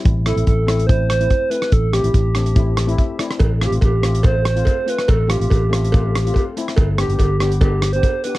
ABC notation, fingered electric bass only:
X:1
M:4/4
L:1/16
Q:"Swing 16ths" 1/4=143
K:Flyd
V:1 name="Fingered electric bass" clef=bass
A,,,3 A,,, A,,,8 z4 | A,,,3 A,,, A,,,8 z4 | A,,,3 A,,, A,,,8 z4 | A,,,3 A,,, A,,,8 z4 |
G,,,3 G,,, G,,,8 z4 |]